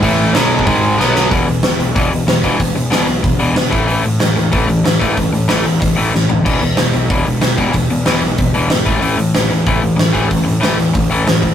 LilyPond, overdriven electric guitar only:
\new Staff \with { instrumentName = "Overdriven electric guitar" } { \clef bass \time 4/4 \key e \major \tempo 4 = 187 <a, e a>4 <b, fis b>4 <gis, dis gis>4 <b, fis b>4 | <e, b, e>8 <e, b,>8 <e, b,>8 <e, b,>8 <e, b, e>8 <e, b,>8 <e, b,>8 <e, b, e>8 | <e, b,>8 <e, b,>8 <e, b, e>8 <e, b,>8 <e, b,>8 <e, b, e>8 <e, b,>8 <a, e a>8 | <a, e a>8 <a, e>8 <a, e>8 <a, e>8 <a, e a>8 <a, e>8 <a, e>8 <a, e a>8 |
<a, e>8 <a, e>8 <a, e a>8 <a, e>8 <a, e>8 <a, e a>8 <a, e>8 <a, e>8 | <e, b, e>8 <e, b,>8 <e, b,>8 <e, b,>8 <e, b, e>8 <e, b,>8 <e, b,>8 <e, b, e>8 | <e, b,>8 <e, b,>8 <e, b, e>8 <e, b,>8 <e, b,>8 <e, b, e>8 <e, b,>8 <a, e a>8 | <a, e a>8 <a, e>8 <a, e>8 <a, e>8 <a, e a>8 <a, e>8 <a, e>8 <a, e a>8 |
<a, e>8 <a, e>8 <a, e a>8 <a, e>8 <a, e>8 <a, e a>8 <a, e>8 <a, e>8 | }